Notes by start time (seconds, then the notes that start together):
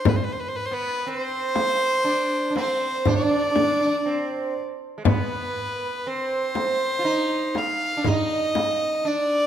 Already playing: C5
0.05 B4, frame drum, darbuka dum
0.16 C5
0.24 B4
0.32 C5
0.40 B4
0.48 C5
0.56 B4
0.66 C5
0.71 B3 B4
1.06 C4 B4
1.19 C5
1.55 darbuka tek, frame drum
2.04 D4
2.50 D4
2.56 C4 C5, darbuka tek, frame drum
3.06 D4 D5, frame drum, darbuka dum
3.15 D4
3.23 D4
3.31 D4
3.36 D4
3.44 D4
3.51 D4
3.56 D4, frame drum
3.64 D4
3.72 D4
3.81 D4
3.87 D4
4.06 C4
4.56 darbuka ka
4.98 G#3
5.04 B3 B4, frame drum, darbuka dum
6.07 C4 C5
6.55 darbuka tek, frame drum
6.99 F4
7.05 D#4
7.55 F5, darbuka tek, frame drum
7.97 D4
8.04 D#4 D#5, frame drum, darbuka dum
8.55 darbuka tek, frame drum
9.05 D4 D5